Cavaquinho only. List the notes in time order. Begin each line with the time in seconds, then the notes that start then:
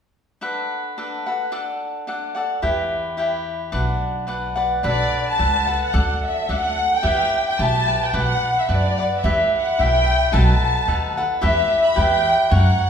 0.41 D4 A4 B4 F#5
0.98 D4 A4 B4 F#5
1.26 A4 B4 F#5
1.52 D4 A4 D5 F#5
2.07 D4 A4 D5 F#5
2.35 A4 D5 F#5
2.62 E4 G4 B4 G5
3.17 E4 G4 B4 G5
3.72 D4 B4 D5 F#5
4.27 D4 B4 D5 F#5
4.56 B4 D5 F#5
4.83 D4 A4 B4 F#5
5.38 D4 A4 B4 F#5
5.66 A4 B4 F#5
5.93 D4 A4 D5 F#5
6.49 D4 A4 D5 F#5
7.02 E4 G4 B4 G5
7.59 E4 G4 B4 G5
7.87 G4 B4 G5
8.13 D4 B4 D5 F#5
8.69 D4 B4 D5 F#5
8.98 B4 D5 F#5
9.24 E4 G4 B4 E5
9.79 E4 G4 B4 E5
10.32 D#4 A4 B4 F#5
10.88 D#4 A4 B4 F#5
11.17 A4 B4 F#5
11.41 E4 G4 B4 E5
11.96 E4 G4 B4 E5
12.50 F#4 A#4 C#5 F#5